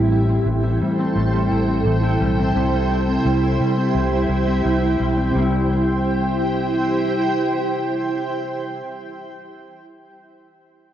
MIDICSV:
0, 0, Header, 1, 4, 480
1, 0, Start_track
1, 0, Key_signature, 0, "major"
1, 0, Tempo, 697674
1, 1758, Time_signature, 4, 2, 24, 8
1, 7525, End_track
2, 0, Start_track
2, 0, Title_t, "Ambient pad"
2, 0, Program_c, 0, 92
2, 0, Note_on_c, 0, 64, 77
2, 0, Note_on_c, 0, 69, 64
2, 0, Note_on_c, 0, 72, 66
2, 0, Note_on_c, 0, 79, 79
2, 1727, Note_off_c, 0, 64, 0
2, 1742, Note_off_c, 0, 69, 0
2, 1754, Note_on_c, 0, 64, 74
2, 1761, Note_on_c, 0, 67, 68
2, 3652, Note_off_c, 0, 72, 0
2, 3652, Note_off_c, 0, 79, 0
2, 3657, Note_off_c, 0, 64, 0
2, 3661, Note_off_c, 0, 67, 0
2, 3688, Note_on_c, 0, 72, 69
2, 3689, Note_on_c, 0, 64, 76
2, 3690, Note_on_c, 0, 79, 74
2, 3693, Note_on_c, 0, 67, 62
2, 5900, Note_off_c, 0, 72, 0
2, 5901, Note_off_c, 0, 64, 0
2, 5901, Note_off_c, 0, 79, 0
2, 5905, Note_off_c, 0, 67, 0
2, 7525, End_track
3, 0, Start_track
3, 0, Title_t, "Clean electric guitar"
3, 0, Program_c, 1, 27
3, 0, Note_on_c, 1, 45, 74
3, 0, Note_on_c, 1, 55, 45
3, 0, Note_on_c, 1, 60, 51
3, 0, Note_on_c, 1, 64, 56
3, 78, Note_off_c, 1, 64, 0
3, 81, Note_on_c, 1, 64, 54
3, 197, Note_off_c, 1, 60, 0
3, 199, Note_on_c, 1, 60, 52
3, 318, Note_on_c, 1, 52, 56
3, 433, Note_off_c, 1, 64, 0
3, 435, Note_on_c, 1, 64, 56
3, 556, Note_off_c, 1, 55, 0
3, 559, Note_on_c, 1, 55, 52
3, 681, Note_off_c, 1, 60, 0
3, 683, Note_on_c, 1, 60, 54
3, 791, Note_off_c, 1, 45, 0
3, 800, Note_on_c, 1, 45, 67
3, 916, Note_off_c, 1, 55, 0
3, 919, Note_on_c, 1, 55, 52
3, 1039, Note_off_c, 1, 64, 0
3, 1042, Note_on_c, 1, 64, 55
3, 1156, Note_off_c, 1, 60, 0
3, 1158, Note_on_c, 1, 60, 46
3, 1277, Note_off_c, 1, 52, 0
3, 1279, Note_on_c, 1, 52, 54
3, 1397, Note_off_c, 1, 64, 0
3, 1400, Note_on_c, 1, 64, 55
3, 1516, Note_off_c, 1, 55, 0
3, 1519, Note_on_c, 1, 55, 54
3, 1642, Note_off_c, 1, 60, 0
3, 1645, Note_on_c, 1, 60, 50
3, 1760, Note_off_c, 1, 52, 0
3, 1763, Note_on_c, 1, 48, 69
3, 1807, Note_off_c, 1, 45, 0
3, 1879, Note_off_c, 1, 55, 0
3, 1881, Note_on_c, 1, 55, 48
3, 1999, Note_off_c, 1, 64, 0
3, 2002, Note_on_c, 1, 64, 55
3, 2119, Note_off_c, 1, 60, 0
3, 2122, Note_on_c, 1, 60, 48
3, 2237, Note_off_c, 1, 55, 0
3, 2240, Note_on_c, 1, 55, 55
3, 2359, Note_off_c, 1, 64, 0
3, 2362, Note_on_c, 1, 64, 52
3, 2475, Note_off_c, 1, 55, 0
3, 2478, Note_on_c, 1, 55, 53
3, 2596, Note_off_c, 1, 60, 0
3, 2599, Note_on_c, 1, 60, 49
3, 2720, Note_off_c, 1, 48, 0
3, 2835, Note_off_c, 1, 55, 0
3, 2838, Note_on_c, 1, 55, 46
3, 2957, Note_off_c, 1, 64, 0
3, 2960, Note_on_c, 1, 64, 49
3, 3079, Note_off_c, 1, 60, 0
3, 3082, Note_on_c, 1, 60, 47
3, 3198, Note_off_c, 1, 55, 0
3, 3201, Note_on_c, 1, 55, 49
3, 3313, Note_off_c, 1, 64, 0
3, 3316, Note_on_c, 1, 64, 49
3, 3433, Note_off_c, 1, 55, 0
3, 3436, Note_on_c, 1, 55, 49
3, 3554, Note_off_c, 1, 60, 0
3, 3557, Note_on_c, 1, 60, 45
3, 3650, Note_on_c, 1, 48, 60
3, 3680, Note_off_c, 1, 55, 0
3, 3683, Note_on_c, 1, 55, 69
3, 3703, Note_off_c, 1, 60, 0
3, 3705, Note_on_c, 1, 60, 70
3, 3728, Note_off_c, 1, 64, 0
3, 3730, Note_on_c, 1, 64, 66
3, 6058, Note_off_c, 1, 48, 0
3, 6091, Note_off_c, 1, 55, 0
3, 6113, Note_off_c, 1, 60, 0
3, 6138, Note_off_c, 1, 64, 0
3, 7525, End_track
4, 0, Start_track
4, 0, Title_t, "Fingered electric bass"
4, 0, Program_c, 2, 33
4, 0, Note_on_c, 2, 33, 85
4, 260, Note_off_c, 2, 33, 0
4, 316, Note_on_c, 2, 33, 94
4, 528, Note_off_c, 2, 33, 0
4, 561, Note_on_c, 2, 45, 76
4, 771, Note_off_c, 2, 45, 0
4, 795, Note_on_c, 2, 33, 85
4, 1007, Note_off_c, 2, 33, 0
4, 1039, Note_on_c, 2, 33, 83
4, 1250, Note_off_c, 2, 33, 0
4, 1275, Note_on_c, 2, 33, 79
4, 1487, Note_off_c, 2, 33, 0
4, 1519, Note_on_c, 2, 35, 66
4, 1730, Note_off_c, 2, 35, 0
4, 1759, Note_on_c, 2, 36, 76
4, 2181, Note_off_c, 2, 36, 0
4, 2237, Note_on_c, 2, 36, 85
4, 2448, Note_off_c, 2, 36, 0
4, 2480, Note_on_c, 2, 48, 73
4, 2690, Note_off_c, 2, 48, 0
4, 2716, Note_on_c, 2, 36, 87
4, 2928, Note_off_c, 2, 36, 0
4, 2954, Note_on_c, 2, 36, 81
4, 3167, Note_off_c, 2, 36, 0
4, 3201, Note_on_c, 2, 36, 77
4, 3411, Note_off_c, 2, 36, 0
4, 3439, Note_on_c, 2, 35, 68
4, 3650, Note_off_c, 2, 35, 0
4, 3681, Note_on_c, 2, 36, 72
4, 5893, Note_off_c, 2, 36, 0
4, 7525, End_track
0, 0, End_of_file